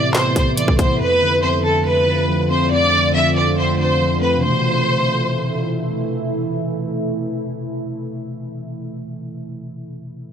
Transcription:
Already playing: tine electric piano A2 C3 E3 B3, ambient pad C3 A3 B3 E4, violin section D5
0.14 violin section C5, snare, clap, closed hi-hat
0.36 tine electric piano C3, violin section C5, kick, closed hi-hat
0.57 tine electric piano E3, violin section D5, closed hi-hat
0.68 kick
0.79 tine electric piano B3, violin section C5, kick, closed hi-hat
1.00 tine electric piano F2, ambient pad D3 C4 F4, violin section B4
1.22 tine electric piano D3
1.43 tine electric piano F2, violin section C5
1.64 tine electric piano D3, violin section A4
1.86 violin section B4
2.07 tine electric piano D3
2.29 tine electric piano F3
2.50 tine electric piano C4, violin section C5
2.72 tine electric piano F2, violin section D5
2.93 tine electric piano D3
3.15 tine electric piano F2, violin section E5
3.36 tine electric piano D3, violin section D5
3.58 violin section C5
3.79 tine electric piano D3, violin section C5
4.00 tine electric piano F3
4.22 tine electric piano C4, violin section B4
4.37 tine electric piano C3
4.41 tine electric piano E3, ambient pad E3 A3 E4, violin section C5
4.45 tine electric piano B2 A3

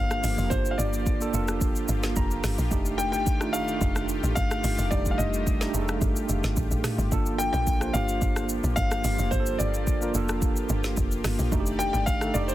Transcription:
Already playing: log drum bass G1, analog synth pad F3 A#3 F4 G4, tine electric piano A#3 D4 F4 A4 C5, grand piano F5
0.11 cross-stick, shaker
0.24 log drum bass G1, open hi-hat, shaker
0.38 log drum bass F1, shaker
0.50 log drum bass G1, tine electric piano A#3 D4 F4 G4, grand piano C5, kick, shaker
0.65 shaker
0.71 grand piano F5
0.78 log drum bass G1, grand piano D5, shaker
0.93 shaker
1.06 kick, shaker
1.20 tine electric piano A#3 D4 F4 A4, shaker
1.33 log drum bass F1, tine electric piano A#3 D4 F4 A4, shaker
1.48 cross-stick, shaker
1.61 kick, shaker
1.76 shaker
1.88 log drum bass G1, tine electric piano F5, shaker
2.03 snare, shaker
2.16 log drum bass F1, tine electric piano A#5, kick, shaker
2.31 shaker
2.44 log drum bass G1, cross-stick, snare, open hi-hat, shaker
2.58 log drum bass A#1, shaker
2.71 log drum bass F1, analog synth pad D#3 A3, tine electric piano A3 D4 D#4 G4, kick, shaker
2.86 shaker
2.98 grand piano G5, shaker
3.12 log drum bass G1, grand piano G5, shaker
3.27 kick, shaker
3.40 tine electric piano A3 D4 D#4 F4, cross-stick, shaker
3.53 log drum bass F1, tine electric piano A3 D4 D#4 G4, grand piano F5, shaker
3.68 shaker
3.81 log drum bass F1, kick, shaker
3.96 cross-stick, shaker
4.09 shaker
4.23 log drum bass A1, shaker
4.35 log drum bass G1, grand piano F5, kick, shaker
4.51 cross-stick, shaker
4.64 log drum bass G1, open hi-hat, shaker
4.78 log drum bass F1, shaker
4.91 log drum bass F1, tine electric piano G3 D4 D#4 G4, grand piano D5, kick, shaker
4.97 tine electric piano A3
5.06 kick, shaker
5.11 grand piano F5
5.18 log drum bass F1, grand piano D#5, shaker
5.34 shaker
5.47 kick, shaker
5.60 tine electric piano A3 D4 D#4 G4, snare, shaker
5.73 log drum bass F1, tine electric piano A3 D4 D#4 G#4, shaker
5.82 tine electric piano A4
5.88 cross-stick, shaker
6.02 log drum bass G1, kick, shaker
6.16 shaker
6.29 log drum bass F1, shaker
6.44 log drum bass G1, snare, shaker
6.57 log drum bass A1, kick, shaker
6.71 log drum bass A1, shaker
6.84 cross-stick, snare, mid tom, open hi-hat, shaker
6.98 log drum bass G1, shaker
7.11 log drum bass G1, analog synth pad F3 A#3, tine electric piano A#3 D4 F4 A4, kick, shaker
7.26 shaker
7.38 grand piano G5, shaker
7.53 log drum bass A#1, grand piano G5, shaker
7.67 kick, shaker
7.80 tine electric piano A#3 D4 F4 C5, cross-stick, shaker
7.93 log drum bass G1, tine electric piano A#3 D4 F4 G4, grand piano F5, shaker
8.08 shaker
8.22 log drum bass G1, kick, shaker
8.36 cross-stick, shaker
8.49 shaker
8.64 log drum bass A#1, shaker
8.76 log drum bass G1, grand piano F5, kick, shaker
8.91 cross-stick, shaker
9.04 log drum bass G1, open hi-hat, shaker
9.19 log drum bass F1, shaker
9.31 log drum bass G1, tine electric piano A#3 D4 F4 G4, grand piano C5, kick, shaker
9.40 tine electric piano A4
9.46 shaker
9.59 log drum bass G1, grand piano D5, shaker
9.74 shaker
9.87 kick, shaker
10.01 tine electric piano A#3 D4 F4 A#4, shaker
10.14 log drum bass F1, tine electric piano A#3 D4 F4 A4, shaker
10.29 cross-stick, shaker
10.42 kick, shaker
10.56 shaker
10.69 log drum bass G1, shaker
10.84 snare, shaker
10.97 log drum bass F1, kick, shaker
11.11 shaker
11.24 log drum bass G1, cross-stick, snare, open hi-hat, shaker
11.39 log drum bass A#1, shaker
11.51 log drum bass F1, analog synth pad D#3 A3 G4 D5, tine electric piano A3 D4 D#4 F#4, kick, shaker
11.60 tine electric piano G4
11.66 shaker
11.79 grand piano G5, shaker
11.93 log drum bass G1, grand piano G5, shaker
12.06 grand piano F5, kick, shaker
12.21 tine electric piano A3 D4 D#4 A4, cross-stick, shaker
12.34 log drum bass F1, tine electric piano A3 D4 D#4 G4, grand piano D5, shaker
12.48 grand piano C5, shaker

